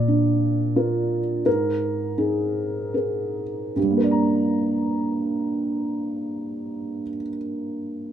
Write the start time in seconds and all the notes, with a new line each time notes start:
Already playing: A#2 D5
0.08 D4
0.76 F4 A#4
1.45 G#2 A#4
2.18 D#4 G#4
2.94 G#4 A#4
3.76 G2 G4
3.83 G3
3.90 A#3
3.97 A#4
4.04 D5
4.11 A#5